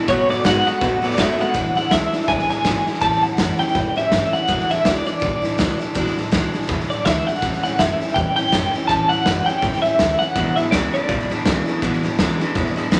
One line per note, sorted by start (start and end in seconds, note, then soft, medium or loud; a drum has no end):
0.08 0.24 B1 loud
0.08 0.30 B2 medium
0.08 0.28 B2 medium
0.08 0.30 D#3 medium
0.08 0.28 F#3 loud
0.08 0.31 A3 medium
0.08 0.30 B3 medium
0.08 0.28 F#4 medium
0.08 0.30 C#5 loud
0.08 kick loud
0.08 snare soft
0.29 0.41 F#2 medium
0.29 0.44 B2 medium
0.29 0.44 F#3 medium
0.29 0.44 A3 soft
0.29 0.45 B3 medium
0.29 0.45 F#4 medium
0.29 0.45 D5 medium
0.29 snare soft
0.44 0.61 G#2 medium
0.44 0.66 B2 medium
0.44 0.64 B2 medium
0.44 0.67 D#3 medium
0.44 0.65 G#3 loud
0.44 0.67 A3 medium
0.44 0.66 B3 medium
0.44 0.64 F#4 loud
0.44 0.66 F#5 medium
0.44 kick medium
0.44 snare loud
0.44 hi-hat pedal loud
0.65 0.80 B2 medium
0.65 0.81 G#3 medium
0.65 0.81 A3 medium
0.65 0.82 B3 medium
0.65 0.81 F#4 medium
0.65 1.03 F#5 loud
0.65 snare soft
0.81 1.01 B2 medium
0.81 0.98 B2 medium
0.81 1.03 D#3 medium
0.81 1.01 F#3 loud
0.81 1.04 A3 medium
0.81 1.03 B3 medium
0.81 1.01 F#4 medium
0.81 kick loud
0.81 snare soft
1.02 1.16 B2 medium
1.02 1.17 F#3 loud
1.02 1.17 A3 medium
1.02 1.18 B3 medium
1.02 1.18 F#4 medium
1.02 1.20 D5 medium
1.02 muted upright bass stroke medium
1.02 snare soft
1.11 snare soft
1.17 1.34 A2 medium
1.17 1.39 B2 medium
1.17 1.37 B2 medium
1.17 1.40 D#3 medium
1.17 1.38 G#3 loud
1.17 1.40 A3 loud
1.17 1.39 B3 loud
1.17 1.37 F#4 loud
1.17 1.41 E5 loud
1.17 kick medium
1.17 snare loud
1.17 hi-hat pedal medium
1.39 1.54 B2 medium
1.39 1.54 G#3 medium
1.39 1.55 A3 medium
1.39 1.55 B3 medium
1.39 1.55 F#4 medium
1.39 1.76 F#5 loud
1.39 muted upright bass stroke medium
1.39 snare soft
1.54 1.71 E1 medium
1.54 1.76 E2 medium
1.54 1.76 B2 medium
1.54 1.77 E3 medium
1.54 1.76 G#3 medium
1.54 1.75 D4 medium
1.54 1.74 E4 medium
1.54 kick loud
1.54 snare soft
1.75 1.88 A1 medium
1.75 1.90 E3 soft
1.75 1.91 G#3 soft
1.75 1.91 D4 soft
1.75 1.91 E4 medium
1.75 1.91 F#5 medium
1.75 snare soft
1.91 2.08 C#2 medium
1.91 2.13 E2 medium
1.91 2.13 B2 medium
1.91 2.13 E3 medium
1.91 2.14 G#3 medium
1.91 2.12 D4 medium
1.91 2.11 E4 medium
1.91 2.28 E5 medium
1.91 kick medium
1.91 snare loud
1.91 hi-hat pedal medium
2.12 2.27 E3 medium
2.12 2.28 G#3 soft
2.12 2.29 D4 medium
2.12 2.28 E4 medium
2.12 snare soft
2.20 snare soft
2.28 2.44 B1 medium
2.28 2.50 E3 medium
2.28 2.51 G#3 medium
2.28 2.49 D4 medium
2.28 2.48 E4 medium
2.28 2.49 G#5 medium
2.28 kick loud
2.28 snare soft
2.39 snare soft
2.49 2.64 E3 medium
2.49 2.65 G#3 medium
2.49 2.65 D4 medium
2.49 2.65 E4 medium
2.49 3.01 G#5 loud
2.49 muted upright bass stroke medium
2.49 snare soft
2.64 2.81 G#1 medium
2.64 2.86 E2 medium
2.64 2.87 B2 medium
2.64 2.87 E3 medium
2.64 2.87 G#3 medium
2.64 2.86 D4 medium
2.64 2.85 E4 medium
2.64 kick medium
2.64 snare loud
2.64 hi-hat pedal medium
2.86 3.00 E3 soft
2.86 3.02 G#3 soft
2.86 3.02 D4 soft
2.86 3.02 E4 medium
2.86 muted upright bass stroke medium
2.86 snare soft
2.94 snare soft
3.01 3.18 A1 medium
3.01 3.23 A2 medium
3.01 3.23 E3 medium
3.01 3.24 G3 medium
3.01 3.22 C#4 medium
3.01 3.20 E4 medium
3.01 3.23 A5 loud
3.01 kick loud
3.01 snare soft
3.12 snare soft
3.22 3.35 E2 medium
3.22 3.37 G3 soft
3.22 3.38 C#4 medium
3.22 3.38 E4 medium
3.22 3.59 F#5 loud
3.22 snare soft
3.37 3.55 F#2 medium
3.37 3.59 A2 medium
3.37 3.60 E3 medium
3.37 3.60 G3 medium
3.37 3.59 C#4 medium
3.37 3.57 E4 medium
3.37 kick medium
3.37 snare loud
3.37 hi-hat pedal medium
3.58 3.74 G3 soft
3.58 3.75 C#4 medium
3.58 3.75 E4 medium
3.58 3.97 G5 loud
3.58 muted upright bass stroke medium
3.58 snare soft
3.67 snare soft
3.73 3.91 A2 medium
3.73 3.96 E3 medium
3.73 3.97 G3 medium
3.73 3.96 C#4 medium
3.73 3.94 E4 medium
3.73 kick loud
3.73 snare soft
3.96 4.12 G3 medium
3.96 4.12 C#4 medium
3.96 4.12 E4 medium
3.96 4.33 E5 loud
3.96 muted upright bass stroke medium
3.96 snare soft
4.12 4.28 G2 medium
4.12 4.33 A2 medium
4.12 4.34 E3 medium
4.12 4.34 G3 medium
4.12 4.33 C#4 medium
4.12 4.31 E4 medium
4.12 kick medium
4.12 snare loud
4.12 hi-hat pedal medium
4.33 4.49 G3 soft
4.33 4.49 C#4 soft
4.33 4.48 E4 medium
4.33 4.70 F#5 medium
4.33 muted upright bass stroke medium
4.33 snare soft
4.48 4.65 E1 medium
4.48 4.70 E2 medium
4.48 4.70 B2 medium
4.48 4.71 E3 medium
4.48 4.70 G#3 medium
4.48 4.69 D4 loud
4.48 4.68 E4 medium
4.48 kick loud
4.48 snare soft
4.59 snare soft
4.69 4.82 A1 medium
4.69 4.84 E3 soft
4.69 4.85 G#3 medium
4.69 4.86 D4 medium
4.69 4.85 E4 medium
4.69 4.85 E5 medium
4.69 snare soft
4.85 5.01 C#2 medium
4.85 5.07 E2 medium
4.85 5.07 B2 medium
4.85 5.07 E3 medium
4.85 5.07 G#3 medium
4.85 5.05 D4 medium
4.85 5.04 E4 medium
4.85 5.06 D5 medium
4.85 kick medium
4.85 snare loud
4.85 hi-hat pedal medium
5.05 5.18 E3 soft
5.05 5.20 G#3 medium
5.05 5.21 D4 medium
5.05 5.21 E4 medium
5.05 6.13 D5 medium
5.05 muted upright bass stroke medium
5.05 snare soft
5.20 5.38 B1 medium
5.20 5.43 E3 medium
5.20 5.43 G#3 medium
5.20 5.42 D4 medium
5.20 5.40 E4 medium
5.20 kick loud
5.20 snare soft
5.42 5.58 E3 medium
5.42 5.58 G#3 medium
5.42 5.58 D4 medium
5.42 5.58 E4 medium
5.42 muted upright bass stroke medium
5.42 snare soft
5.58 5.75 C#2 medium
5.58 5.80 E2 medium
5.58 5.80 B2 medium
5.58 5.81 E3 medium
5.58 5.80 G#3 medium
5.58 5.79 D4 medium
5.58 5.78 E4 medium
5.58 kick medium
5.58 snare loud
5.58 hi-hat pedal medium
5.79 5.94 E3 soft
5.79 5.95 G#3 soft
5.79 5.96 D4 medium
5.79 5.95 E4 medium
5.79 snare soft
5.95 6.12 E1 medium
5.95 6.17 E2 medium
5.95 6.17 B2 medium
5.95 6.17 E3 medium
5.95 6.17 G#3 loud
5.95 6.16 D4 medium
5.95 6.15 E4 loud
5.95 kick loud
5.95 snare soft
6.06 snare soft
6.16 6.29 B1 medium
6.16 6.31 E3 medium
6.16 6.32 G#3 medium
6.16 6.32 D4 medium
6.16 6.32 E4 medium
6.16 snare soft
6.31 6.48 C#2 medium
6.31 6.54 E2 medium
6.31 6.54 B2 loud
6.31 6.54 E3 medium
6.31 6.54 G#3 medium
6.31 6.53 D4 medium
6.31 6.52 E4 medium
6.31 kick medium
6.31 snare loud
6.31 hi-hat pedal medium
6.53 6.66 E3 medium
6.53 6.67 G#3 medium
6.53 6.69 D4 medium
6.53 6.69 E4 medium
6.53 snare soft
6.62 snare soft
6.67 6.85 E2 medium
6.67 6.90 E3 medium
6.67 6.90 G#3 medium
6.67 6.90 D4 medium
6.67 6.88 E4 medium
6.67 kick loud
6.67 snare soft
6.80 snare soft
6.89 7.05 E3 medium
6.89 7.06 G#3 medium
6.89 7.06 D4 medium
6.89 7.05 E4 medium
6.89 7.05 D5 medium
6.89 muted upright bass stroke medium
6.89 snare soft
7.05 7.22 D2 medium
7.05 7.27 E2 medium
7.05 7.28 B2 medium
7.05 7.28 E3 medium
7.05 7.28 G#3 medium
7.05 7.27 D4 medium
7.05 7.25 E4 medium
7.05 7.27 E5 medium
7.05 kick medium
7.05 snare loud
7.05 hi-hat pedal medium
7.27 7.42 E3 soft
7.27 7.43 G#3 soft
7.27 7.43 D4 soft
7.27 7.42 E4 soft
7.27 7.62 F#5 medium
7.27 snare soft
7.35 snare soft
7.42 7.59 A1 medium
7.42 7.64 A2 medium
7.42 7.64 E3 medium
7.42 7.65 G3 medium
7.42 7.64 C#4 medium
7.42 7.62 E4 medium
7.42 kick loud
7.42 snare soft
7.53 snare soft
7.63 7.75 D2 medium
7.63 7.79 G3 soft
7.63 7.80 C#4 soft
7.63 7.79 E4 medium
7.63 7.79 F#5 loud
7.63 snare soft
7.79 7.95 F#2 medium
7.79 8.01 A2 medium
7.79 8.01 E3 medium
7.79 8.02 G3 medium
7.79 8.00 C#4 medium
7.79 7.99 E4 medium
7.79 8.14 E5 medium
7.79 kick medium
7.79 snare loud
7.79 hi-hat pedal medium
8.00 8.15 G3 medium
8.00 8.16 C#4 soft
8.00 8.16 E4 medium
8.00 muted upright bass stroke medium
8.00 snare soft
8.08 snare soft
8.14 8.32 E2 medium
8.14 8.37 E3 medium
8.14 8.38 G3 medium
8.14 8.37 C#4 medium
8.14 8.35 G5 medium
8.14 kick loud
8.14 snare soft
8.19 8.35 E4 medium
8.36 8.52 G3 soft
8.36 8.53 C#4 medium
8.36 8.52 E4 medium
8.36 8.87 G5 loud
8.36 muted upright bass stroke medium
8.36 snare soft
8.52 8.69 F#2 medium
8.52 8.74 A2 medium
8.52 8.74 E3 medium
8.52 8.75 G3 medium
8.52 8.74 C#4 medium
8.52 8.73 E4 medium
8.52 kick medium
8.52 snare loud
8.52 hi-hat pedal medium
8.74 8.89 G3 soft
8.74 8.89 C#4 medium
8.74 8.89 E4 medium
8.74 muted upright bass stroke medium
8.74 snare soft
8.88 9.11 A2 medium
8.88 9.11 E3 medium
8.88 9.11 G3 medium
8.88 9.11 C#4 medium
8.88 9.09 E4 medium
8.88 9.09 A5 loud
8.88 kick loud
8.88 snare soft
9.09 9.22 E2 medium
9.09 9.27 C#4 soft
9.09 9.26 E4 soft
9.09 9.46 F#5 loud
9.09 snare soft
9.13 9.26 G3 medium
9.26 9.42 F#2 loud
9.26 9.47 A2 medium
9.26 9.48 E3 medium
9.26 9.48 G3 medium
9.26 9.47 C#4 medium
9.26 9.45 E4 medium
9.26 kick medium
9.26 snare loud
9.26 hi-hat pedal medium
9.46 9.63 C#4 medium
9.46 9.62 E4 medium
9.46 9.82 G5 loud
9.46 muted upright bass stroke medium
9.46 snare soft
9.50 9.62 G3 medium
9.62 9.79 A2 medium
9.62 9.84 E3 medium
9.62 9.84 G3 medium
9.62 9.84 C#4 medium
9.62 9.82 E4 medium
9.62 kick loud
9.62 snare soft
9.73 snare soft
9.82 10.00 C#4 medium
9.82 9.99 E4 medium
9.82 10.18 E5 loud
9.82 muted upright bass stroke medium
9.82 snare soft
9.87 9.99 G3 medium
9.99 10.15 D2 medium
9.99 10.21 A2 medium
9.99 10.21 E3 medium
9.99 10.21 G3 medium
9.99 10.20 C#4 medium
9.99 10.19 E4 medium
9.99 kick medium
9.99 snare loud
9.99 hi-hat pedal medium
10.19 10.36 C#4 soft
10.19 10.36 E4 soft
10.19 10.54 F#5 loud
10.19 snare soft
10.23 10.37 G3 soft
10.35 10.52 E1 loud
10.35 10.55 E2 medium
10.35 10.57 E2 medium
10.35 10.55 B2 loud
10.35 10.58 B2 medium
10.35 10.58 E3 medium
10.35 10.58 G#3 medium
10.35 10.57 D4 medium
10.35 10.55 E4 medium
10.35 kick loud
10.35 snare soft
10.56 10.69 A1 medium
10.56 10.71 E2 medium
10.56 10.71 B2 medium
10.56 10.72 G#3 medium
10.56 10.73 D4 medium
10.56 10.72 E4 medium
10.56 10.61 E5 medium
10.56 snare soft
10.60 10.72 E3 soft
10.71 10.88 C#2 loud
10.71 10.94 E2 medium
10.71 10.92 E2 medium
10.71 10.94 B2 medium
10.71 10.92 C#3 loud
10.71 10.94 E3 medium
10.71 10.94 G#3 medium
10.71 10.93 D4 medium
10.71 10.92 E4 medium
10.71 10.77 D5 medium
10.71 kick medium
10.71 snare loud
10.71 hi-hat pedal medium
10.93 11.08 E2 medium
10.93 11.08 C#3 loud
10.93 11.07 E3 soft
10.93 11.09 G#3 medium
10.93 11.10 D4 medium
10.93 11.09 E4 medium
10.93 12.00 D5 medium
10.93 snare soft
11.08 11.25 B1 medium
11.08 11.29 E2 medium
11.08 11.29 B2 medium
11.08 11.30 E3 medium
11.08 11.31 G#3 medium
11.08 11.30 D4 medium
11.08 11.29 E4 medium
11.08 kick loud
11.08 snare soft
11.19 snare soft
11.30 11.45 E2 medium
11.30 11.45 B2 medium
11.30 11.45 E3 medium
11.30 11.46 G#3 medium
11.30 11.46 D4 medium
11.30 11.45 E4 medium
11.30 muted upright bass stroke medium
11.30 snare soft
11.45 11.62 C#2 medium
11.45 11.67 E2 medium
11.45 11.65 E2 medium
11.45 11.67 B2 medium
11.45 11.66 C#3 medium
11.45 11.68 E3 medium
11.45 11.67 G#3 loud
11.45 11.66 D4 medium
11.45 11.65 E4 medium
11.45 kick medium
11.45 snare loud
11.45 hi-hat pedal medium
11.66 11.81 E2 medium
11.66 11.81 C#3 medium
11.66 11.82 E3 soft
11.66 11.83 G#3 medium
11.66 11.82 D4 medium
11.66 11.82 E4 medium
11.66 snare soft
11.82 11.98 E1 loud
11.82 12.04 E2 medium
11.82 12.02 E2 medium
11.82 12.04 B2 medium
11.82 12.02 B2 loud
11.82 12.04 E3 medium
11.82 12.05 G#3 medium
11.82 12.03 D4 loud
11.82 12.02 E4 medium
11.82 kick loud
11.82 snare soft
11.93 snare soft
12.03 12.15 B1 medium
12.03 12.18 E2 medium
12.03 12.18 B2 medium
12.03 12.19 E3 medium
12.03 12.19 G#3 medium
12.03 12.19 D4 medium
12.03 12.19 E4 medium
12.03 snare soft
12.19 12.35 C#2 medium
12.19 12.40 E2 medium
12.19 12.38 E2 medium
12.19 12.41 B2 medium
12.19 12.39 C#3 medium
12.19 12.41 E3 loud
12.19 12.41 G#3 medium
12.19 12.40 D4 loud
12.19 12.38 E4 medium
12.19 kick medium
12.19 snare loud
12.19 hi-hat pedal medium
12.40 12.54 E2 medium
12.40 12.55 C#3 medium
12.40 12.54 E3 medium
12.40 12.55 G#3 medium
12.40 12.56 D4 medium
12.40 12.55 E4 medium
12.40 snare soft
12.55 12.72 E2 medium
12.55 12.75 E2 medium
12.55 12.75 B2 medium
12.55 12.77 E3 medium
12.55 12.78 G#3 medium
12.55 12.76 D4 medium
12.55 12.75 E4 medium
12.55 kick loud
12.55 snare soft
12.66 snare soft
12.76 12.91 E2 medium
12.76 12.91 B2 medium
12.76 12.91 E3 medium
12.76 12.91 G#3 medium
12.76 12.92 D4 medium
12.76 12.92 E4 medium
12.76 snare soft
12.91 13.00 A#1 medium
12.91 13.00 E2 medium
12.91 13.00 E2 loud
12.91 13.00 B2 medium
12.91 13.00 C#3 medium
12.91 13.00 E3 medium
12.91 13.00 G#3 medium
12.91 13.00 D4 medium
12.91 13.00 E4 medium
12.91 kick medium
12.91 snare loud
12.91 hi-hat pedal medium